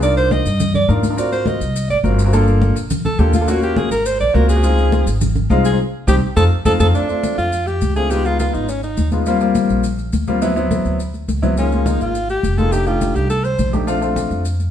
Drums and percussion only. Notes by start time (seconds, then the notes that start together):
0.02 high conga, maracas
0.17 high conga, maracas
0.31 high conga, maracas
0.46 high conga, maracas
0.60 high conga, low conga, maracas
0.74 high conga, low conga, maracas
0.89 high conga, maracas
1.03 high conga, maracas
1.18 high conga, maracas
1.32 high conga, maracas
1.46 high conga, maracas
1.60 high conga, maracas
1.75 high conga, maracas
1.89 high conga, maracas
2.04 high conga, maracas
2.19 maracas
2.33 high conga, maracas
2.47 high conga, maracas
2.62 high conga, maracas
2.76 high conga, maracas
2.90 high conga, low conga, maracas
3.05 high conga, low conga, maracas
3.19 high conga, maracas
3.33 high conga, maracas
3.48 high conga, maracas
3.62 high conga, maracas
3.76 high conga, maracas
3.91 high conga, maracas
4.06 high conga, maracas
4.20 high conga, maracas
4.35 high conga, maracas
4.49 maracas
4.63 high conga, maracas
4.78 high conga, maracas
4.92 high conga, maracas
5.07 high conga, maracas
5.21 high conga, low conga, maracas
5.36 high conga, low conga, maracas
5.50 high conga, maracas
5.65 maracas
6.08 high conga, maracas
6.37 high conga, maracas
6.65 high conga, maracas
6.80 high conga, maracas
6.94 high conga, maracas
7.09 high conga, maracas
7.24 high conga, maracas
7.38 high conga, maracas
7.52 high conga, maracas
7.67 high conga, maracas
7.81 high conga, maracas
7.96 maracas
8.10 high conga, maracas
8.25 high conga, maracas
8.39 high conga, maracas
8.54 high conga, maracas
8.69 high conga, maracas
8.83 high conga, maracas
8.97 high conga, maracas
9.12 high conga, maracas
9.26 high conga, maracas
9.40 high conga, maracas
9.55 high conga, maracas
9.69 high conga, maracas
9.84 high conga, maracas
9.98 high conga, maracas
10.13 high conga, maracas
10.27 high conga, maracas
10.42 high conga, maracas
10.57 high conga, maracas
10.71 high conga, maracas
10.85 high conga, maracas
11.00 high conga, maracas
11.14 high conga, maracas
11.28 high conga, maracas
11.43 high conga, maracas
11.57 high conga, maracas
11.72 high conga, maracas
11.86 high conga, maracas
12.00 high conga, maracas
12.15 high conga, maracas
12.29 high conga, maracas
12.43 high conga, maracas
12.58 high conga, maracas
12.72 high conga, maracas
12.87 high conga, maracas
13.01 high conga, maracas
13.16 high conga, maracas
13.30 high conga, maracas
13.44 high conga, maracas
13.59 high conga, maracas
13.73 high conga, maracas
13.88 high conga, maracas
14.02 high conga, maracas
14.16 high conga, maracas
14.31 high conga, maracas
14.45 high conga, maracas
14.60 high conga, maracas